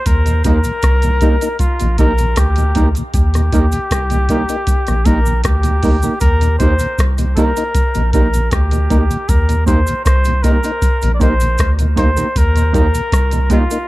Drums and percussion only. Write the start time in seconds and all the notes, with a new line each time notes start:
0.06 kick, closed hi-hat, cabasa
0.26 closed hi-hat, cabasa
0.44 kick, closed hi-hat, cabasa
0.64 closed hi-hat, cabasa
0.82 kick, cross-stick, closed hi-hat, cabasa
1.02 closed hi-hat, cabasa
1.21 kick, closed hi-hat, cabasa
1.41 closed hi-hat, cabasa
1.59 kick, closed hi-hat, cabasa
1.80 closed hi-hat, cabasa
1.98 kick, closed hi-hat, cabasa
2.18 closed hi-hat, cabasa
2.36 kick, cross-stick, closed hi-hat, cabasa
2.56 closed hi-hat, cabasa
2.75 kick, closed hi-hat, cabasa
2.95 closed hi-hat, cabasa
3.14 kick, closed hi-hat, cabasa
3.34 cross-stick, closed hi-hat, cabasa
3.52 kick, closed hi-hat, cabasa
3.72 closed hi-hat, cabasa
3.91 kick, cross-stick, closed hi-hat, cabasa
4.10 closed hi-hat, cabasa
4.29 kick, closed hi-hat, cabasa
4.49 closed hi-hat, cabasa
4.67 kick, closed hi-hat, cabasa
4.87 cross-stick, closed hi-hat, cabasa
5.05 kick, closed hi-hat, cabasa
5.26 cabasa
5.44 kick, cross-stick, closed hi-hat, cabasa
5.63 closed hi-hat, cabasa
5.83 kick, open hi-hat, cabasa
6.02 cabasa
6.21 kick, closed hi-hat, cabasa
6.41 closed hi-hat, cabasa
6.60 kick, closed hi-hat, cabasa
6.79 closed hi-hat, cabasa
6.98 kick, cross-stick, closed hi-hat, cabasa
7.18 closed hi-hat, cabasa
7.37 kick, closed hi-hat, cabasa
7.57 closed hi-hat, cabasa
7.75 kick, closed hi-hat, cabasa
7.94 closed hi-hat, cabasa
8.13 kick, closed hi-hat, cabasa
8.34 closed hi-hat, cabasa
8.51 kick, cross-stick, closed hi-hat, cabasa
8.71 closed hi-hat, cabasa
8.90 kick, closed hi-hat, cabasa
9.11 closed hi-hat, cabasa
9.29 kick, closed hi-hat, cabasa
9.49 closed hi-hat, cabasa
9.67 kick, closed hi-hat, cabasa
9.87 closed hi-hat, cabasa
10.06 kick, cross-stick, closed hi-hat, cabasa
10.25 closed hi-hat, cabasa
10.44 kick, closed hi-hat, cabasa
10.64 closed hi-hat, cabasa
10.82 kick, closed hi-hat, cabasa
11.02 closed hi-hat, cabasa
11.21 kick, closed hi-hat, cabasa
11.40 closed hi-hat, cabasa
11.58 kick, cross-stick, closed hi-hat, cabasa
11.79 closed hi-hat, cabasa
11.97 kick, closed hi-hat, cabasa
12.17 closed hi-hat, cabasa
12.36 kick, closed hi-hat, cabasa
12.56 closed hi-hat, cabasa
12.74 kick, closed hi-hat, cabasa
12.95 closed hi-hat, cabasa
13.12 kick, cross-stick, closed hi-hat, cabasa
13.31 closed hi-hat, cabasa
13.50 kick, closed hi-hat, cabasa
13.71 closed hi-hat, cabasa